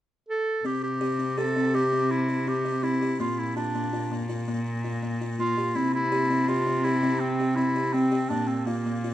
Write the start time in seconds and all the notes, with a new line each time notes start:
0.29 A4
0.65 C3 C4 G4
0.83 G4
1.01 G4
1.19 C4
1.38 G4 A4
1.56 C4
1.74 G4
1.92 C4
2.11 E4
2.29 G4
2.47 C4 G4
2.65 G4
2.83 C4 E4
3.02 G4
3.20 A#2 A#3 F4
3.39 E4
3.56 D4 F4
3.75 A#3
3.93 F4
4.11 A#3
4.29 F4
4.48 A#3
4.84 F4
5.02 A#3
5.21 F4
5.39 A#3 F4
5.57 G4
5.75 C3 C4 E4
5.94 E4
6.12 G4
6.30 C4
6.48 F4 G4
6.67 C4
6.84 E4 G4
7.03 C4
7.20 C4
7.40 G4
7.56 C4 E4
7.76 G4
7.93 C4
8.12 G4
8.30 A#2 A#3 D4
8.48 C4
8.66 A#3 F4
8.86 A#3
9.04 F4